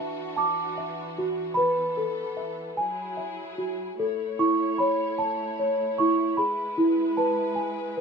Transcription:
Already playing: string section E3 D4 F#4, celesta D4 F#4 E5 A5
0.36 celesta A5 D6
0.78 celesta E5
1.18 celesta F#4
1.54 string section B3 A4, celesta B4 B5
1.97 celesta A4
2.37 celesta E5
2.76 string section F#3 E4 G#4, celesta G#5
3.17 celesta E5
3.58 celesta F#4
3.98 string section A3 E4 C#5, celesta A4
4.39 celesta E4 C#6
4.78 celesta C#5 B5
5.18 celesta A5
5.59 celesta C#5
5.98 celesta E4 C#6
6.36 string section G#3 B4, celesta G#4 B5
6.78 celesta E4
7.17 celesta B4 A5
7.55 celesta G#5
7.97 celesta B4

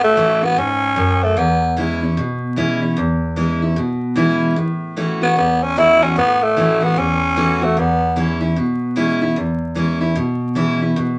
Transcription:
Already playing: steel-string acoustic guitar A2
0.04 tenor saxophone A3
0.16 steel-string acoustic guitar E3 A3 C#4 F#4
0.42 tenor saxophone B3, steel-string acoustic guitar C#4 F#4
0.57 steel-string acoustic guitar G#2, tenor saxophone C#4
0.96 steel-string acoustic guitar F#2
1.23 tenor saxophone A3
1.37 steel-string acoustic guitar E2, tenor saxophone B3
1.76 steel-string acoustic guitar E3 G#3 C#4 E4
2.02 steel-string acoustic guitar C#4 E4
2.17 steel-string acoustic guitar B2
2.56 steel-string acoustic guitar E3 G#3 C#4 E4
2.81 steel-string acoustic guitar C#4 E4
2.97 steel-string acoustic guitar E2
3.36 steel-string acoustic guitar E3 G#3 C#4 E4
3.62 steel-string acoustic guitar C#4 E4
3.76 steel-string acoustic guitar B2
4.16 steel-string acoustic guitar E3 G#3 C#4 E4
4.56 steel-string acoustic guitar A2
4.96 steel-string acoustic guitar E3 A3 C#4 F#4
5.21 tenor saxophone B3, steel-string acoustic guitar C#4 F#4
5.36 steel-string acoustic guitar E2, tenor saxophone B3
5.63 tenor saxophone C#4
5.76 steel-string acoustic guitar E3 A3 C#4 F#4, tenor saxophone E4
6.02 tenor saxophone C#4, steel-string acoustic guitar C#4 F#4
6.16 steel-string acoustic guitar A2, tenor saxophone B3
6.43 tenor saxophone A3
6.57 steel-string acoustic guitar E3 A3 C#4 F#4
6.81 tenor saxophone B3, steel-string acoustic guitar C#4 F#4
6.96 steel-string acoustic guitar E2, tenor saxophone C#4
7.36 steel-string acoustic guitar E3 A3 C#4 F#4
7.62 tenor saxophone A3, steel-string acoustic guitar C#4 F#4
7.77 steel-string acoustic guitar E2, tenor saxophone B3
8.16 steel-string acoustic guitar E3 G#3 C#4 E4
8.41 steel-string acoustic guitar C#4 E4
8.56 steel-string acoustic guitar B2
8.96 steel-string acoustic guitar E3 G#3 C#4 E4
9.22 steel-string acoustic guitar C#4 E4
9.36 steel-string acoustic guitar E2
9.75 steel-string acoustic guitar E3 G#3 C#4 E4
10.01 steel-string acoustic guitar C#4 E4
10.16 steel-string acoustic guitar B2
10.55 steel-string acoustic guitar E3 G#3 C#4 E4
10.81 steel-string acoustic guitar C#4 E4
10.96 steel-string acoustic guitar B2

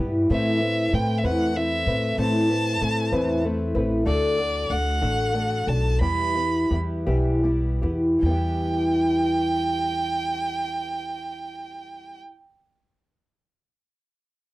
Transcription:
Already playing: twelve-string acoustic guitar G4
0.00 upright bass G2, twelve-string acoustic guitar G3 B3 E4
0.30 twelve-string acoustic guitar A2 E3 A3 C4 E4 B4, upright bass A2, violin E5
0.60 twelve-string acoustic guitar A3 C4 E4 B4
0.92 upright bass A2, twelve-string acoustic guitar A3 C4 E4 B4, violin G5
1.18 violin E5
1.24 upright bass E2, twelve-string acoustic guitar A2 E3 A3 C4 E4 B4, violin F#5
1.55 twelve-string acoustic guitar A3 C4 E4 B4, violin E5
1.86 upright bass A2, twelve-string acoustic guitar A3 C4 E4 B4
2.18 twelve-string acoustic guitar A2 E3 A3 C4 E4 B4, upright bass A2, violin A5
2.50 twelve-string acoustic guitar A3 C4 E4 B4
2.81 upright bass A2, twelve-string acoustic guitar A3 C4 E4 B4
3.12 upright bass E2, twelve-string acoustic guitar A2 E3 A3 C4 E4 B4
3.44 twelve-string acoustic guitar A3 C4 E4 B4
3.75 upright bass A1, twelve-string acoustic guitar A3 C4 E4 B4
4.05 upright bass D2, twelve-string acoustic guitar D3 A3 D4 F#4 A4, violin D5
4.38 twelve-string acoustic guitar D4 F#4 A4
4.70 upright bass D2, twelve-string acoustic guitar A3 D4 F#4 A4, violin F#5
5.01 upright bass A1, twelve-string acoustic guitar D3 A3 D4 F#4 A4
5.34 twelve-string acoustic guitar A3 D4 F#4 A4
5.67 upright bass B1, twelve-string acoustic guitar D4 F#4 A4, violin A5
6.00 upright bass E2, twelve-string acoustic guitar E3 G3 B3 E4 G4, violin B5
6.35 twelve-string acoustic guitar B3 E4 G4
6.70 upright bass E2, twelve-string acoustic guitar G3 B3 E4 G4
7.07 upright bass B1, twelve-string acoustic guitar E3 G3 B3 E4 G4
7.43 twelve-string acoustic guitar G3 B3 E4 G4
7.82 upright bass E2, twelve-string acoustic guitar B3 E4 G4
8.19 upright bass E2, twelve-string acoustic guitar E3 G3, violin G5
8.26 twelve-string acoustic guitar B3 E4
8.32 twelve-string acoustic guitar G4

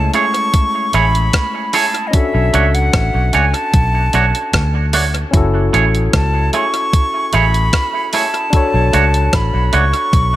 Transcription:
Already playing: tine electric piano G#3 A3 C#4 E4, flute A5
0.14 clean electric guitar A3 E4 G#4 C#5, flute C#6, closed hi-hat
0.34 closed hi-hat
0.54 kick, closed hi-hat
0.93 fingered electric bass A1, clean electric guitar A3 E4 G#4 C#5, flute B5, closed hi-hat
1.15 closed hi-hat
1.33 kick, cross-stick, closed hi-hat
1.73 clean electric guitar A3 E4 G#4 C#5, flute A5, open hi-hat
1.95 closed hi-hat
2.07 tine electric piano C#4, flute D#5
2.13 tine electric piano D4 F#4 A4, flute E5, kick, closed hi-hat
2.35 fingered electric bass B1
2.54 fingered electric bass C#2, clean electric guitar A3 D4 F#4 C#5, closed hi-hat
2.74 flute F#5, closed hi-hat
2.93 fingered electric bass A1, kick, cross-stick, closed hi-hat
3.15 fingered electric bass B1
3.33 fingered electric bass C#2, clean electric guitar A3 D4 F#4 C#5, flute G#5, closed hi-hat
3.54 flute A5, closed hi-hat
3.74 fingered electric bass B1, kick, closed hi-hat
4.13 fingered electric bass B1, clean electric guitar A3 D4 F#4 C#5, closed hi-hat
4.35 closed hi-hat
4.53 fingered electric bass D2, kick, cross-stick, closed hi-hat
4.93 clean electric guitar A3 D4 F#4 C#5, open hi-hat
5.15 closed hi-hat
5.31 fingered electric bass F#1, tine electric piano C#4 E4, kick, closed hi-hat
5.35 tine electric piano F#4 A4
5.73 fingered electric bass A1, clean electric guitar A3 E4 G#4 C#5, closed hi-hat
5.95 closed hi-hat
6.13 fingered electric bass C#2, flute A5, kick, cross-stick, closed hi-hat
6.53 clean electric guitar A3 E4 G#4 C#5, flute C#6, closed hi-hat
6.74 closed hi-hat
6.93 kick, closed hi-hat
7.33 fingered electric bass A1, clean electric guitar A3 E4 G#4 C#5, flute B5, closed hi-hat
7.54 closed hi-hat
7.73 kick, cross-stick, closed hi-hat
8.13 clean electric guitar A3 E4 G#4 C#5, flute A5, open hi-hat
8.34 closed hi-hat
8.50 tine electric piano D4 F#4, kick, closed hi-hat
8.54 tine electric piano A4 C#5
8.74 fingered electric bass B1
8.93 fingered electric bass C#2, clean electric guitar A3 D4 F#4 C#5, closed hi-hat
9.14 closed hi-hat
9.33 fingered electric bass A1, flute B5, kick, cross-stick, closed hi-hat
9.54 fingered electric bass B1
9.73 fingered electric bass C#2, clean electric guitar A3 D4 F#4 C#5, flute C#6, closed hi-hat
9.94 closed hi-hat
10.13 fingered electric bass B1, kick, closed hi-hat

